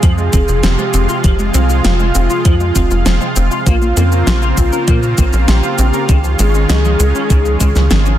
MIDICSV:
0, 0, Header, 1, 7, 480
1, 0, Start_track
1, 0, Key_signature, -4, "minor"
1, 0, Tempo, 606061
1, 983, Time_signature, 4, 2, 24, 8
1, 6482, End_track
2, 0, Start_track
2, 0, Title_t, "Soft synth lead"
2, 0, Program_c, 0, 80
2, 0, Note_on_c, 0, 68, 105
2, 503, Note_on_c, 0, 67, 103
2, 515, Note_off_c, 0, 68, 0
2, 1127, Note_off_c, 0, 67, 0
2, 1224, Note_on_c, 0, 65, 109
2, 2807, Note_off_c, 0, 65, 0
2, 2904, Note_on_c, 0, 65, 108
2, 3527, Note_off_c, 0, 65, 0
2, 3625, Note_on_c, 0, 65, 102
2, 4248, Note_off_c, 0, 65, 0
2, 4344, Note_on_c, 0, 67, 104
2, 5064, Note_on_c, 0, 68, 105
2, 5076, Note_off_c, 0, 67, 0
2, 6482, Note_off_c, 0, 68, 0
2, 6482, End_track
3, 0, Start_track
3, 0, Title_t, "Clean electric guitar"
3, 0, Program_c, 1, 27
3, 23, Note_on_c, 1, 53, 104
3, 83, Note_off_c, 1, 53, 0
3, 264, Note_on_c, 1, 53, 77
3, 299, Note_off_c, 1, 53, 0
3, 503, Note_on_c, 1, 60, 108
3, 563, Note_off_c, 1, 60, 0
3, 622, Note_on_c, 1, 60, 96
3, 658, Note_off_c, 1, 60, 0
3, 863, Note_on_c, 1, 65, 76
3, 923, Note_off_c, 1, 65, 0
3, 983, Note_on_c, 1, 53, 104
3, 1043, Note_off_c, 1, 53, 0
3, 1224, Note_on_c, 1, 53, 81
3, 1259, Note_off_c, 1, 53, 0
3, 1463, Note_on_c, 1, 60, 102
3, 1523, Note_off_c, 1, 60, 0
3, 1584, Note_on_c, 1, 60, 104
3, 1619, Note_off_c, 1, 60, 0
3, 1824, Note_on_c, 1, 65, 77
3, 1883, Note_off_c, 1, 65, 0
3, 1943, Note_on_c, 1, 53, 107
3, 2003, Note_off_c, 1, 53, 0
3, 2182, Note_on_c, 1, 53, 78
3, 2218, Note_off_c, 1, 53, 0
3, 2423, Note_on_c, 1, 60, 103
3, 2483, Note_off_c, 1, 60, 0
3, 2542, Note_on_c, 1, 60, 100
3, 2578, Note_off_c, 1, 60, 0
3, 2781, Note_on_c, 1, 65, 78
3, 2842, Note_off_c, 1, 65, 0
3, 2901, Note_on_c, 1, 58, 108
3, 2962, Note_off_c, 1, 58, 0
3, 3142, Note_on_c, 1, 58, 80
3, 3178, Note_off_c, 1, 58, 0
3, 3382, Note_on_c, 1, 65, 107
3, 3442, Note_off_c, 1, 65, 0
3, 3503, Note_on_c, 1, 65, 102
3, 3539, Note_off_c, 1, 65, 0
3, 3742, Note_on_c, 1, 70, 78
3, 3802, Note_off_c, 1, 70, 0
3, 3863, Note_on_c, 1, 58, 110
3, 3923, Note_off_c, 1, 58, 0
3, 4103, Note_on_c, 1, 58, 73
3, 4139, Note_off_c, 1, 58, 0
3, 4342, Note_on_c, 1, 65, 104
3, 4402, Note_off_c, 1, 65, 0
3, 4462, Note_on_c, 1, 65, 99
3, 4498, Note_off_c, 1, 65, 0
3, 4702, Note_on_c, 1, 70, 80
3, 4762, Note_off_c, 1, 70, 0
3, 4823, Note_on_c, 1, 49, 101
3, 4883, Note_off_c, 1, 49, 0
3, 5063, Note_on_c, 1, 49, 80
3, 5099, Note_off_c, 1, 49, 0
3, 5302, Note_on_c, 1, 56, 103
3, 5362, Note_off_c, 1, 56, 0
3, 5421, Note_on_c, 1, 56, 98
3, 5458, Note_off_c, 1, 56, 0
3, 5661, Note_on_c, 1, 61, 81
3, 5722, Note_off_c, 1, 61, 0
3, 5781, Note_on_c, 1, 49, 105
3, 5842, Note_off_c, 1, 49, 0
3, 6020, Note_on_c, 1, 49, 97
3, 6081, Note_off_c, 1, 49, 0
3, 6262, Note_on_c, 1, 49, 85
3, 6323, Note_off_c, 1, 49, 0
3, 6382, Note_on_c, 1, 49, 74
3, 6419, Note_off_c, 1, 49, 0
3, 6482, End_track
4, 0, Start_track
4, 0, Title_t, "Synth arpeggio sound"
4, 0, Program_c, 2, 84
4, 22, Note_on_c, 2, 53, 84
4, 64, Note_off_c, 2, 53, 0
4, 144, Note_on_c, 2, 56, 79
4, 185, Note_off_c, 2, 56, 0
4, 264, Note_on_c, 2, 60, 101
4, 333, Note_off_c, 2, 60, 0
4, 384, Note_on_c, 2, 65, 77
4, 453, Note_off_c, 2, 65, 0
4, 503, Note_on_c, 2, 53, 87
4, 544, Note_off_c, 2, 53, 0
4, 622, Note_on_c, 2, 56, 79
4, 664, Note_off_c, 2, 56, 0
4, 742, Note_on_c, 2, 60, 98
4, 812, Note_off_c, 2, 60, 0
4, 863, Note_on_c, 2, 65, 78
4, 932, Note_off_c, 2, 65, 0
4, 983, Note_on_c, 2, 53, 81
4, 1025, Note_off_c, 2, 53, 0
4, 1103, Note_on_c, 2, 56, 80
4, 1145, Note_off_c, 2, 56, 0
4, 1223, Note_on_c, 2, 60, 104
4, 1292, Note_off_c, 2, 60, 0
4, 1343, Note_on_c, 2, 65, 79
4, 1412, Note_off_c, 2, 65, 0
4, 1463, Note_on_c, 2, 53, 85
4, 1504, Note_off_c, 2, 53, 0
4, 1583, Note_on_c, 2, 56, 82
4, 1624, Note_off_c, 2, 56, 0
4, 1703, Note_on_c, 2, 60, 102
4, 1772, Note_off_c, 2, 60, 0
4, 1823, Note_on_c, 2, 65, 79
4, 1893, Note_off_c, 2, 65, 0
4, 1943, Note_on_c, 2, 53, 83
4, 1985, Note_off_c, 2, 53, 0
4, 2064, Note_on_c, 2, 56, 74
4, 2105, Note_off_c, 2, 56, 0
4, 2182, Note_on_c, 2, 60, 101
4, 2252, Note_off_c, 2, 60, 0
4, 2303, Note_on_c, 2, 65, 79
4, 2372, Note_off_c, 2, 65, 0
4, 2423, Note_on_c, 2, 53, 85
4, 2465, Note_off_c, 2, 53, 0
4, 2543, Note_on_c, 2, 56, 75
4, 2585, Note_off_c, 2, 56, 0
4, 2663, Note_on_c, 2, 60, 99
4, 2732, Note_off_c, 2, 60, 0
4, 2783, Note_on_c, 2, 65, 82
4, 2852, Note_off_c, 2, 65, 0
4, 2902, Note_on_c, 2, 53, 87
4, 2944, Note_off_c, 2, 53, 0
4, 3023, Note_on_c, 2, 58, 78
4, 3065, Note_off_c, 2, 58, 0
4, 3144, Note_on_c, 2, 60, 105
4, 3213, Note_off_c, 2, 60, 0
4, 3263, Note_on_c, 2, 61, 82
4, 3333, Note_off_c, 2, 61, 0
4, 3384, Note_on_c, 2, 53, 86
4, 3425, Note_off_c, 2, 53, 0
4, 3503, Note_on_c, 2, 58, 80
4, 3545, Note_off_c, 2, 58, 0
4, 3623, Note_on_c, 2, 60, 105
4, 3693, Note_off_c, 2, 60, 0
4, 3743, Note_on_c, 2, 61, 82
4, 3813, Note_off_c, 2, 61, 0
4, 3864, Note_on_c, 2, 53, 88
4, 3905, Note_off_c, 2, 53, 0
4, 3985, Note_on_c, 2, 58, 81
4, 4025, Note_off_c, 2, 58, 0
4, 4104, Note_on_c, 2, 60, 102
4, 4173, Note_off_c, 2, 60, 0
4, 4223, Note_on_c, 2, 61, 77
4, 4293, Note_off_c, 2, 61, 0
4, 4343, Note_on_c, 2, 53, 85
4, 4385, Note_off_c, 2, 53, 0
4, 4463, Note_on_c, 2, 58, 76
4, 4504, Note_off_c, 2, 58, 0
4, 4583, Note_on_c, 2, 60, 103
4, 4653, Note_off_c, 2, 60, 0
4, 4703, Note_on_c, 2, 61, 79
4, 4772, Note_off_c, 2, 61, 0
4, 4821, Note_on_c, 2, 51, 81
4, 4864, Note_off_c, 2, 51, 0
4, 4943, Note_on_c, 2, 53, 76
4, 4985, Note_off_c, 2, 53, 0
4, 5062, Note_on_c, 2, 56, 105
4, 5132, Note_off_c, 2, 56, 0
4, 5182, Note_on_c, 2, 61, 83
4, 5252, Note_off_c, 2, 61, 0
4, 5302, Note_on_c, 2, 51, 86
4, 5344, Note_off_c, 2, 51, 0
4, 5424, Note_on_c, 2, 53, 81
4, 5465, Note_off_c, 2, 53, 0
4, 5543, Note_on_c, 2, 56, 105
4, 5612, Note_off_c, 2, 56, 0
4, 5663, Note_on_c, 2, 61, 78
4, 5732, Note_off_c, 2, 61, 0
4, 5784, Note_on_c, 2, 51, 86
4, 5825, Note_off_c, 2, 51, 0
4, 5904, Note_on_c, 2, 53, 81
4, 5945, Note_off_c, 2, 53, 0
4, 6023, Note_on_c, 2, 56, 100
4, 6093, Note_off_c, 2, 56, 0
4, 6145, Note_on_c, 2, 61, 80
4, 6213, Note_off_c, 2, 61, 0
4, 6265, Note_on_c, 2, 51, 87
4, 6306, Note_off_c, 2, 51, 0
4, 6384, Note_on_c, 2, 53, 80
4, 6425, Note_off_c, 2, 53, 0
4, 6482, End_track
5, 0, Start_track
5, 0, Title_t, "Analog synth pad"
5, 0, Program_c, 3, 89
5, 0, Note_on_c, 3, 48, 87
5, 0, Note_on_c, 3, 53, 78
5, 0, Note_on_c, 3, 56, 81
5, 0, Note_on_c, 3, 65, 95
5, 2872, Note_off_c, 3, 48, 0
5, 2872, Note_off_c, 3, 53, 0
5, 2872, Note_off_c, 3, 56, 0
5, 2904, Note_on_c, 3, 49, 87
5, 2904, Note_on_c, 3, 58, 76
5, 2904, Note_on_c, 3, 60, 82
5, 4804, Note_off_c, 3, 49, 0
5, 4804, Note_off_c, 3, 58, 0
5, 4804, Note_off_c, 3, 60, 0
5, 4825, Note_on_c, 3, 56, 78
5, 4825, Note_on_c, 3, 61, 76
5, 4826, Note_on_c, 3, 51, 86
5, 6482, Note_off_c, 3, 51, 0
5, 6482, Note_off_c, 3, 56, 0
5, 6482, Note_off_c, 3, 61, 0
5, 6482, Note_off_c, 3, 65, 0
5, 6482, End_track
6, 0, Start_track
6, 0, Title_t, "Analog synth bass"
6, 0, Program_c, 4, 38
6, 23, Note_on_c, 4, 41, 96
6, 235, Note_off_c, 4, 41, 0
6, 263, Note_on_c, 4, 29, 86
6, 369, Note_off_c, 4, 29, 0
6, 382, Note_on_c, 4, 29, 90
6, 488, Note_off_c, 4, 29, 0
6, 502, Note_on_c, 4, 29, 102
6, 608, Note_off_c, 4, 29, 0
6, 742, Note_on_c, 4, 29, 91
6, 848, Note_off_c, 4, 29, 0
6, 983, Note_on_c, 4, 29, 97
6, 1194, Note_off_c, 4, 29, 0
6, 1223, Note_on_c, 4, 36, 91
6, 1435, Note_off_c, 4, 36, 0
6, 1463, Note_on_c, 4, 29, 102
6, 1675, Note_off_c, 4, 29, 0
6, 1704, Note_on_c, 4, 29, 99
6, 1809, Note_off_c, 4, 29, 0
6, 1943, Note_on_c, 4, 41, 91
6, 2154, Note_off_c, 4, 41, 0
6, 2183, Note_on_c, 4, 29, 86
6, 2288, Note_off_c, 4, 29, 0
6, 2303, Note_on_c, 4, 29, 85
6, 2408, Note_off_c, 4, 29, 0
6, 2422, Note_on_c, 4, 29, 101
6, 2528, Note_off_c, 4, 29, 0
6, 2663, Note_on_c, 4, 29, 89
6, 2768, Note_off_c, 4, 29, 0
6, 2902, Note_on_c, 4, 34, 96
6, 3114, Note_off_c, 4, 34, 0
6, 3143, Note_on_c, 4, 41, 88
6, 3354, Note_off_c, 4, 41, 0
6, 3382, Note_on_c, 4, 34, 103
6, 3594, Note_off_c, 4, 34, 0
6, 3622, Note_on_c, 4, 34, 97
6, 3728, Note_off_c, 4, 34, 0
6, 3863, Note_on_c, 4, 46, 94
6, 4074, Note_off_c, 4, 46, 0
6, 4103, Note_on_c, 4, 34, 84
6, 4209, Note_off_c, 4, 34, 0
6, 4223, Note_on_c, 4, 34, 88
6, 4329, Note_off_c, 4, 34, 0
6, 4342, Note_on_c, 4, 34, 104
6, 4448, Note_off_c, 4, 34, 0
6, 4583, Note_on_c, 4, 34, 93
6, 4688, Note_off_c, 4, 34, 0
6, 4823, Note_on_c, 4, 37, 103
6, 5035, Note_off_c, 4, 37, 0
6, 5064, Note_on_c, 4, 32, 89
6, 5275, Note_off_c, 4, 32, 0
6, 5303, Note_on_c, 4, 37, 98
6, 5514, Note_off_c, 4, 37, 0
6, 5542, Note_on_c, 4, 37, 94
6, 5648, Note_off_c, 4, 37, 0
6, 5783, Note_on_c, 4, 37, 103
6, 5994, Note_off_c, 4, 37, 0
6, 6023, Note_on_c, 4, 37, 82
6, 6129, Note_off_c, 4, 37, 0
6, 6146, Note_on_c, 4, 37, 107
6, 6250, Note_off_c, 4, 37, 0
6, 6265, Note_on_c, 4, 32, 105
6, 6475, Note_off_c, 4, 32, 0
6, 6482, End_track
7, 0, Start_track
7, 0, Title_t, "Drums"
7, 22, Note_on_c, 9, 42, 92
7, 22, Note_on_c, 9, 82, 37
7, 23, Note_on_c, 9, 36, 124
7, 102, Note_off_c, 9, 36, 0
7, 102, Note_off_c, 9, 42, 0
7, 102, Note_off_c, 9, 82, 0
7, 142, Note_on_c, 9, 82, 18
7, 222, Note_off_c, 9, 82, 0
7, 262, Note_on_c, 9, 42, 63
7, 262, Note_on_c, 9, 82, 66
7, 263, Note_on_c, 9, 36, 104
7, 341, Note_off_c, 9, 42, 0
7, 341, Note_off_c, 9, 82, 0
7, 342, Note_off_c, 9, 36, 0
7, 382, Note_on_c, 9, 82, 29
7, 461, Note_off_c, 9, 82, 0
7, 502, Note_on_c, 9, 38, 119
7, 502, Note_on_c, 9, 42, 91
7, 502, Note_on_c, 9, 82, 39
7, 582, Note_off_c, 9, 38, 0
7, 582, Note_off_c, 9, 42, 0
7, 582, Note_off_c, 9, 82, 0
7, 622, Note_on_c, 9, 82, 20
7, 701, Note_off_c, 9, 82, 0
7, 742, Note_on_c, 9, 42, 67
7, 742, Note_on_c, 9, 82, 69
7, 821, Note_off_c, 9, 42, 0
7, 821, Note_off_c, 9, 82, 0
7, 862, Note_on_c, 9, 82, 28
7, 941, Note_off_c, 9, 82, 0
7, 983, Note_on_c, 9, 36, 118
7, 983, Note_on_c, 9, 42, 83
7, 983, Note_on_c, 9, 82, 37
7, 1062, Note_off_c, 9, 36, 0
7, 1062, Note_off_c, 9, 42, 0
7, 1062, Note_off_c, 9, 82, 0
7, 1102, Note_on_c, 9, 82, 20
7, 1182, Note_off_c, 9, 82, 0
7, 1222, Note_on_c, 9, 42, 62
7, 1222, Note_on_c, 9, 82, 72
7, 1301, Note_off_c, 9, 42, 0
7, 1301, Note_off_c, 9, 82, 0
7, 1342, Note_on_c, 9, 82, 30
7, 1422, Note_off_c, 9, 82, 0
7, 1462, Note_on_c, 9, 38, 115
7, 1462, Note_on_c, 9, 42, 89
7, 1462, Note_on_c, 9, 82, 38
7, 1541, Note_off_c, 9, 38, 0
7, 1541, Note_off_c, 9, 42, 0
7, 1541, Note_off_c, 9, 82, 0
7, 1582, Note_on_c, 9, 82, 19
7, 1661, Note_off_c, 9, 82, 0
7, 1702, Note_on_c, 9, 42, 65
7, 1702, Note_on_c, 9, 82, 72
7, 1781, Note_off_c, 9, 42, 0
7, 1781, Note_off_c, 9, 82, 0
7, 1821, Note_on_c, 9, 82, 30
7, 1901, Note_off_c, 9, 82, 0
7, 1941, Note_on_c, 9, 42, 86
7, 1941, Note_on_c, 9, 82, 39
7, 1943, Note_on_c, 9, 36, 114
7, 2021, Note_off_c, 9, 42, 0
7, 2021, Note_off_c, 9, 82, 0
7, 2022, Note_off_c, 9, 36, 0
7, 2062, Note_on_c, 9, 82, 19
7, 2141, Note_off_c, 9, 82, 0
7, 2183, Note_on_c, 9, 36, 59
7, 2183, Note_on_c, 9, 42, 65
7, 2183, Note_on_c, 9, 82, 71
7, 2262, Note_off_c, 9, 36, 0
7, 2262, Note_off_c, 9, 42, 0
7, 2262, Note_off_c, 9, 82, 0
7, 2303, Note_on_c, 9, 82, 31
7, 2382, Note_off_c, 9, 82, 0
7, 2422, Note_on_c, 9, 38, 116
7, 2422, Note_on_c, 9, 42, 94
7, 2422, Note_on_c, 9, 82, 39
7, 2502, Note_off_c, 9, 38, 0
7, 2502, Note_off_c, 9, 42, 0
7, 2502, Note_off_c, 9, 82, 0
7, 2543, Note_on_c, 9, 82, 20
7, 2622, Note_off_c, 9, 82, 0
7, 2663, Note_on_c, 9, 42, 66
7, 2663, Note_on_c, 9, 82, 74
7, 2742, Note_off_c, 9, 42, 0
7, 2742, Note_off_c, 9, 82, 0
7, 2783, Note_on_c, 9, 82, 30
7, 2862, Note_off_c, 9, 82, 0
7, 2903, Note_on_c, 9, 36, 113
7, 2903, Note_on_c, 9, 42, 89
7, 2903, Note_on_c, 9, 82, 41
7, 2982, Note_off_c, 9, 36, 0
7, 2982, Note_off_c, 9, 42, 0
7, 2982, Note_off_c, 9, 82, 0
7, 3024, Note_on_c, 9, 82, 20
7, 3104, Note_off_c, 9, 82, 0
7, 3144, Note_on_c, 9, 42, 67
7, 3144, Note_on_c, 9, 82, 74
7, 3223, Note_off_c, 9, 42, 0
7, 3223, Note_off_c, 9, 82, 0
7, 3264, Note_on_c, 9, 82, 29
7, 3343, Note_off_c, 9, 82, 0
7, 3383, Note_on_c, 9, 38, 118
7, 3383, Note_on_c, 9, 42, 92
7, 3383, Note_on_c, 9, 82, 41
7, 3462, Note_off_c, 9, 38, 0
7, 3462, Note_off_c, 9, 42, 0
7, 3462, Note_off_c, 9, 82, 0
7, 3503, Note_on_c, 9, 82, 19
7, 3582, Note_off_c, 9, 82, 0
7, 3622, Note_on_c, 9, 42, 66
7, 3622, Note_on_c, 9, 82, 71
7, 3623, Note_on_c, 9, 36, 56
7, 3702, Note_off_c, 9, 36, 0
7, 3702, Note_off_c, 9, 42, 0
7, 3702, Note_off_c, 9, 82, 0
7, 3742, Note_on_c, 9, 82, 31
7, 3821, Note_off_c, 9, 82, 0
7, 3862, Note_on_c, 9, 42, 92
7, 3862, Note_on_c, 9, 82, 42
7, 3863, Note_on_c, 9, 36, 112
7, 3941, Note_off_c, 9, 42, 0
7, 3941, Note_off_c, 9, 82, 0
7, 3942, Note_off_c, 9, 36, 0
7, 3982, Note_on_c, 9, 82, 20
7, 4061, Note_off_c, 9, 82, 0
7, 4101, Note_on_c, 9, 42, 67
7, 4101, Note_on_c, 9, 82, 74
7, 4103, Note_on_c, 9, 36, 95
7, 4180, Note_off_c, 9, 42, 0
7, 4180, Note_off_c, 9, 82, 0
7, 4182, Note_off_c, 9, 36, 0
7, 4221, Note_on_c, 9, 82, 31
7, 4300, Note_off_c, 9, 82, 0
7, 4341, Note_on_c, 9, 38, 113
7, 4341, Note_on_c, 9, 42, 90
7, 4341, Note_on_c, 9, 82, 39
7, 4420, Note_off_c, 9, 38, 0
7, 4420, Note_off_c, 9, 42, 0
7, 4420, Note_off_c, 9, 82, 0
7, 4461, Note_on_c, 9, 82, 21
7, 4540, Note_off_c, 9, 82, 0
7, 4581, Note_on_c, 9, 42, 69
7, 4581, Note_on_c, 9, 82, 77
7, 4661, Note_off_c, 9, 42, 0
7, 4661, Note_off_c, 9, 82, 0
7, 4702, Note_on_c, 9, 82, 31
7, 4781, Note_off_c, 9, 82, 0
7, 4822, Note_on_c, 9, 42, 90
7, 4822, Note_on_c, 9, 82, 41
7, 4823, Note_on_c, 9, 36, 115
7, 4901, Note_off_c, 9, 42, 0
7, 4901, Note_off_c, 9, 82, 0
7, 4902, Note_off_c, 9, 36, 0
7, 4942, Note_on_c, 9, 82, 21
7, 5021, Note_off_c, 9, 82, 0
7, 5062, Note_on_c, 9, 42, 70
7, 5062, Note_on_c, 9, 82, 74
7, 5141, Note_off_c, 9, 42, 0
7, 5141, Note_off_c, 9, 82, 0
7, 5183, Note_on_c, 9, 82, 31
7, 5262, Note_off_c, 9, 82, 0
7, 5303, Note_on_c, 9, 38, 111
7, 5303, Note_on_c, 9, 42, 95
7, 5303, Note_on_c, 9, 82, 43
7, 5382, Note_off_c, 9, 38, 0
7, 5382, Note_off_c, 9, 42, 0
7, 5382, Note_off_c, 9, 82, 0
7, 5423, Note_on_c, 9, 82, 21
7, 5502, Note_off_c, 9, 82, 0
7, 5543, Note_on_c, 9, 42, 69
7, 5543, Note_on_c, 9, 82, 75
7, 5622, Note_off_c, 9, 42, 0
7, 5622, Note_off_c, 9, 82, 0
7, 5664, Note_on_c, 9, 82, 31
7, 5743, Note_off_c, 9, 82, 0
7, 5783, Note_on_c, 9, 36, 118
7, 5783, Note_on_c, 9, 42, 95
7, 5783, Note_on_c, 9, 82, 42
7, 5862, Note_off_c, 9, 36, 0
7, 5863, Note_off_c, 9, 42, 0
7, 5863, Note_off_c, 9, 82, 0
7, 5903, Note_on_c, 9, 82, 21
7, 5982, Note_off_c, 9, 82, 0
7, 6023, Note_on_c, 9, 36, 58
7, 6023, Note_on_c, 9, 42, 68
7, 6023, Note_on_c, 9, 82, 73
7, 6102, Note_off_c, 9, 36, 0
7, 6102, Note_off_c, 9, 42, 0
7, 6102, Note_off_c, 9, 82, 0
7, 6143, Note_on_c, 9, 38, 36
7, 6143, Note_on_c, 9, 82, 33
7, 6222, Note_off_c, 9, 38, 0
7, 6222, Note_off_c, 9, 82, 0
7, 6262, Note_on_c, 9, 38, 114
7, 6262, Note_on_c, 9, 42, 93
7, 6262, Note_on_c, 9, 82, 44
7, 6341, Note_off_c, 9, 38, 0
7, 6341, Note_off_c, 9, 42, 0
7, 6341, Note_off_c, 9, 82, 0
7, 6382, Note_on_c, 9, 82, 22
7, 6461, Note_off_c, 9, 82, 0
7, 6482, End_track
0, 0, End_of_file